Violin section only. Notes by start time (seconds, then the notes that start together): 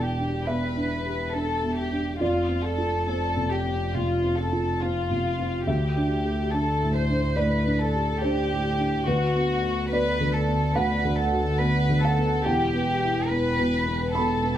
0.02 G4
0.45 B4
1.32 A4
1.77 G4
2.19 F4
2.63 A4
3.07 A4
3.50 G4
3.94 F4
4.37 A4
4.81 F4
5.67 G4
6.51 A4
6.93 C5
7.36 B4
7.79 A4
8.21 G4
9.04 F#4
9.89 B4
10.32 A4
10.73 B4
11.16 A4
11.59 B4
12.01 A4
12.44 G4
13.29 B4
14.13 A4